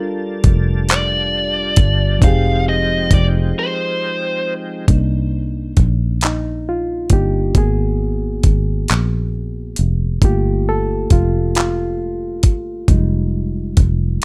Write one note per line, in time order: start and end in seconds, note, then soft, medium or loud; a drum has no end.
0.00 0.41 G1 loud
0.00 2.16 G3 medium
0.00 2.19 G3 medium
0.00 2.17 D4 medium
0.00 2.20 D4 medium
0.00 2.18 F4 medium
0.00 2.20 F4 medium
0.00 2.19 A4 medium
0.00 2.20 A#4 medium
0.00 2.20 A5 medium
0.44 1.74 F1 medium
0.44 kick loud
0.44 closed hi-hat medium
0.89 2.24 D5 medium
0.89 clap loud
0.89 closed hi-hat medium
1.76 2.18 G1 loud
1.76 kick loud
1.76 closed hi-hat medium
2.19 3.07 F1 loud
2.19 4.83 F3 medium
2.19 4.86 F3 medium
2.19 4.86 G#3 medium
2.19 4.84 C4 medium
2.19 4.86 C4 medium
2.19 4.86 D#4 medium
2.19 4.85 D#4 medium
2.19 4.86 G5 medium
2.19 kick loud
2.19 closed hi-hat medium
2.24 4.86 G4 medium
2.24 4.87 G#4 medium
2.24 2.64 F5 loud
2.69 3.13 D#5 loud
3.11 3.52 F1 loud
3.11 3.26 D5 medium
3.11 kick medium
3.11 closed hi-hat medium
3.59 4.53 C5 medium
4.88 5.74 C2 medium
4.88 5.48 A#3 soft
4.88 5.48 D4 soft
4.88 5.48 D#4 medium
4.88 kick loud
4.88 closed hi-hat medium
5.77 7.07 A#1 medium
5.77 kick medium
5.77 closed hi-hat soft
6.21 6.69 D#4 medium
6.21 clap loud
6.21 closed hi-hat medium
6.69 7.13 F4 medium
7.10 7.51 G1 medium
7.10 7.52 A#3 soft
7.10 7.52 D4 soft
7.10 7.52 D#4 soft
7.10 7.58 G4 medium
7.10 kick medium
7.10 closed hi-hat medium
7.55 8.40 G#1 medium
7.55 8.85 A#3 soft
7.55 8.85 B3 soft
7.55 8.86 F#4 medium
7.55 9.75 G#4 medium
7.55 kick loud
7.55 closed hi-hat medium
8.43 8.85 G#1 medium
8.43 kick medium
8.43 closed hi-hat medium
8.88 9.74 A#1 medium
8.88 clap loud
8.88 closed hi-hat medium
9.76 10.19 F1 medium
9.76 closed hi-hat medium
10.22 11.07 G1 loud
10.22 11.52 A3 medium
10.22 11.52 A#3 medium
10.22 11.11 F4 medium
10.22 10.69 G4 medium
10.22 kick loud
10.22 closed hi-hat medium
10.69 11.13 A4 loud
11.10 12.45 F1 medium
11.10 11.53 F4 medium
11.10 kick medium
11.10 closed hi-hat medium
11.55 13.74 F4 medium
11.55 clap loud
11.55 closed hi-hat medium
12.43 12.85 G1 medium
12.43 kick loud
12.43 closed hi-hat medium
12.88 13.74 F1 medium
12.88 14.18 G3 medium
12.88 14.18 G#3 soft
12.88 14.19 D#4 medium
12.88 kick loud
12.88 closed hi-hat medium
13.77 14.18 F1 medium
13.77 kick medium
13.77 closed hi-hat medium